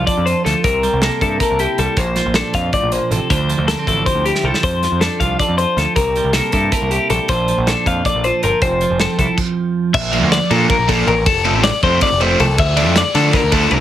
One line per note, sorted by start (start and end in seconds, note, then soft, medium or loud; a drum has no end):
0.00 0.64 F2 medium
0.00 0.44 F3 medium
0.00 0.67 D4 medium
0.00 0.25 F4 medium
0.07 0.62 A4 medium
0.07 0.26 D5 medium
0.07 kick medium
0.07 closed hi-hat medium
0.17 0.32 F2 medium
0.26 0.62 F4 medium
0.26 0.44 C5 medium
0.26 closed hi-hat medium
0.45 0.53 D2 loud
0.45 0.64 F3 medium
0.45 0.64 A4 medium
0.45 snare soft
0.45 closed hi-hat medium
0.64 0.87 C2 medium
0.64 1.97 C3 medium
0.64 1.02 A#4 medium
0.64 kick loud
0.64 closed hi-hat medium
0.83 1.78 G3 medium
0.83 closed hi-hat medium
0.93 1.08 C2 loud
1.02 2.36 A#3 medium
1.02 1.21 A4 medium
1.02 snare loud
1.02 closed hi-hat medium
1.21 1.36 G2 medium
1.21 1.59 E4 medium
1.21 1.40 A4 medium
1.21 kick medium
1.21 closed hi-hat medium
1.40 1.96 A4 medium
1.40 1.59 A#4 medium
1.40 kick medium
1.40 closed hi-hat medium
1.50 1.65 C2 medium
1.59 1.95 E4 medium
1.59 1.78 G4 medium
1.59 closed hi-hat medium
1.78 1.86 C2 medium
1.78 1.95 G3 medium
1.78 1.98 A4 medium
1.78 closed hi-hat medium
1.97 2.20 A#1 medium
1.97 2.73 A#2 medium
1.97 2.35 C5 medium
1.97 kick loud
1.97 closed hi-hat medium
2.16 3.49 F3 medium
2.16 snare soft
2.16 closed hi-hat soft
2.26 2.41 A#1 loud
2.34 3.68 D4 medium
2.34 2.55 A4 medium
2.34 snare loud
2.34 closed hi-hat medium
2.54 2.69 F2 medium
2.54 3.88 F4 medium
2.54 2.73 F5 medium
2.54 kick medium
2.54 snare soft
2.54 closed hi-hat medium
2.73 2.92 A2 medium
2.73 2.93 D5 medium
2.73 kick medium
2.73 closed hi-hat medium
2.82 2.98 A#1 medium
2.92 3.12 A#2 medium
2.92 3.11 C5 medium
2.92 closed hi-hat medium
3.11 3.19 A1 medium
3.11 3.30 C3 medium
3.11 3.30 A4 medium
3.11 closed hi-hat medium
3.30 3.53 D2 medium
3.30 4.61 D3 medium
3.30 3.68 C5 medium
3.30 kick loud
3.30 closed hi-hat medium
3.49 4.44 F3 medium
3.49 closed hi-hat medium
3.58 3.74 D2 loud
3.68 3.79 A#3 medium
3.68 3.87 A4 medium
3.68 snare loud
3.68 closed hi-hat medium
3.79 4.64 C4 soft
3.87 4.02 A1 medium
3.87 4.26 E4 medium
3.87 4.06 A4 medium
3.87 kick medium
3.87 closed hi-hat medium
4.06 4.62 G4 medium
4.06 4.25 C5 medium
4.06 kick loud
4.06 closed hi-hat medium
4.15 4.31 D2 medium
4.26 4.62 E4 medium
4.26 4.45 G4 medium
4.26 closed hi-hat medium
4.35 snare medium
4.43 4.51 C2 loud
4.43 4.82 F3 medium
4.43 4.64 A4 medium
4.54 snare medium
4.63 4.86 F2 medium
4.63 5.97 F2 medium
4.63 5.02 C5 medium
4.63 kick loud
4.63 closed hi-hat medium
4.83 5.77 F3 medium
4.83 snare soft
4.83 closed hi-hat soft
4.92 5.07 F2 loud
5.01 6.01 D4 medium
5.01 5.20 A4 medium
5.01 snare loud
5.01 closed hi-hat medium
5.20 5.35 C2 medium
5.20 5.59 F4 medium
5.20 5.39 F5 medium
5.20 kick medium
5.20 closed hi-hat medium
5.39 5.95 A4 medium
5.39 5.58 D5 medium
5.39 kick medium
5.39 closed hi-hat medium
5.48 5.64 F2 medium
5.58 5.95 F4 medium
5.58 5.77 C5 medium
5.58 closed hi-hat medium
5.77 5.85 D2 loud
5.77 5.97 F3 medium
5.77 5.95 A4 medium
5.77 snare soft
5.77 closed hi-hat medium
5.96 6.19 C2 medium
5.96 7.30 C3 medium
5.96 6.33 A#4 medium
5.96 kick loud
5.96 closed hi-hat medium
6.16 7.09 G3 medium
6.16 closed hi-hat soft
6.24 6.40 C2 medium
6.33 7.30 A#3 medium
6.33 6.52 A4 medium
6.33 snare medium
6.33 closed hi-hat medium
6.52 6.68 G2 medium
6.52 6.90 E4 medium
6.52 6.72 A4 medium
6.52 kick medium
6.52 closed hi-hat medium
6.72 7.27 A4 medium
6.72 6.91 A#4 medium
6.72 kick medium
6.72 closed hi-hat medium
6.82 6.97 C2 medium
6.91 7.27 E4 medium
6.91 7.10 G4 medium
6.91 closed hi-hat medium
7.10 7.18 A#1 loud
7.10 7.27 G3 medium
7.10 7.29 A4 medium
7.10 closed hi-hat medium
7.28 7.52 A#1 medium
7.28 8.60 A#2 medium
7.28 7.49 F3 medium
7.28 7.67 D4 medium
7.28 7.88 F4 soft
7.28 8.07 A4 medium
7.28 7.67 C5 medium
7.28 kick loud
7.28 closed hi-hat medium
7.48 8.43 F3 medium
7.48 closed hi-hat medium
7.58 7.73 A#1 loud
7.67 8.60 D4 medium
7.67 7.87 A4 medium
7.67 snare medium
7.67 closed hi-hat medium
7.86 8.01 F2 medium
7.86 8.25 F4 medium
7.86 8.06 F5 medium
7.86 kick medium
7.86 closed hi-hat medium
8.05 8.61 A4 medium
8.05 8.25 D5 medium
8.05 kick medium
8.05 closed hi-hat medium
8.15 8.30 A#1 medium
8.24 8.61 F4 medium
8.24 8.43 C5 medium
8.24 closed hi-hat medium
8.43 8.51 G1 medium
8.43 8.80 F3 medium
8.43 8.62 A#4 medium
8.43 closed hi-hat medium
8.62 8.84 F1 medium
8.62 10.71 F2 medium
8.62 9.00 C5 medium
8.62 kick loud
8.62 closed hi-hat medium
8.81 10.70 F3 medium
8.81 closed hi-hat soft
8.90 9.06 F1 medium
9.00 9.36 C4 medium
9.00 9.18 A4 medium
9.00 snare loud
9.00 closed hi-hat medium
9.18 9.26 C2 medium
9.18 9.37 E4 medium
9.18 9.38 A4 medium
9.18 kick medium
9.18 closed hi-hat medium
9.38 kick medium
9.38 crash medium
9.94 10.23 A#1 medium
9.94 10.32 E5 medium
9.94 kick loud
9.94 crash loud
10.13 10.38 A#2 medium
10.13 10.38 F3 medium
10.13 10.38 A#3 medium
10.13 10.38 D4 loud
10.13 ride medium
10.23 10.38 D2 loud
10.32 10.51 D5 medium
10.32 snare loud
10.32 ride loud
10.51 10.66 A#2 loud
10.51 10.76 A#2 medium
10.51 10.76 F3 medium
10.51 10.76 A#3 medium
10.51 10.76 D4 medium
10.51 10.69 A4 medium
10.51 ride medium
10.70 10.89 A#4 medium
10.70 kick loud
10.70 ride loud
10.78 11.01 A#1 medium
10.88 11.13 A#2 medium
10.88 11.13 F3 medium
10.88 11.13 A#3 loud
10.88 11.13 D4 medium
10.88 11.07 A4 medium
10.88 kick medium
10.88 ride medium
11.07 11.28 A1 loud
11.07 11.26 A#4 medium
11.07 ride medium
11.26 11.54 F1 medium
11.26 11.64 A4 medium
11.26 kick loud
11.26 ride loud
11.45 11.70 C3 medium
11.45 11.70 F3 medium
11.45 11.70 A3 medium
11.45 11.70 C4 medium
11.45 ride medium
11.54 11.70 A1 loud
11.64 11.83 D5 medium
11.64 snare loud
11.64 ride medium
11.83 11.98 F2 medium
11.83 12.09 C3 medium
11.83 12.09 F3 medium
11.83 12.08 A3 medium
11.83 12.08 C4 medium
11.83 12.02 C5 medium
11.83 kick medium
11.83 ride medium
12.01 12.22 D5 medium
12.01 kick loud
12.01 ride loud
12.12 12.34 F1 medium
12.20 12.46 C3 medium
12.20 12.46 F3 medium
12.20 12.45 A3 loud
12.20 12.45 C4 medium
12.20 12.40 C5 medium
12.20 ride medium
12.40 12.58 C2 loud
12.40 12.59 A4 medium
12.40 ride medium
12.58 12.87 D2 medium
12.58 12.97 E5 loud
12.58 kick loud
12.58 ride loud
12.77 13.02 D3 medium
12.77 13.02 F3 loud
12.77 13.02 A3 medium
12.77 13.02 D4 loud
12.77 ride medium
12.87 13.02 F2 loud
12.96 13.16 D5 medium
12.96 snare loud
12.96 ride loud
13.15 13.30 D3 medium
13.15 13.40 D3 medium
13.15 13.40 F3 medium
13.15 13.40 A3 medium
13.15 13.40 D4 medium
13.15 13.34 A4 medium
13.15 snare soft
13.15 ride medium
13.33 13.52 A#4 medium
13.33 kick loud
13.33 snare soft
13.33 ride loud
13.43 13.65 D2 medium
13.52 13.78 D3 medium
13.52 13.78 F3 medium
13.52 13.78 A3 loud
13.52 13.77 D4 loud
13.52 13.71 A4 medium
13.52 kick medium
13.52 ride medium
13.71 13.80 C2 loud
13.71 13.80 A#4 medium
13.71 ride medium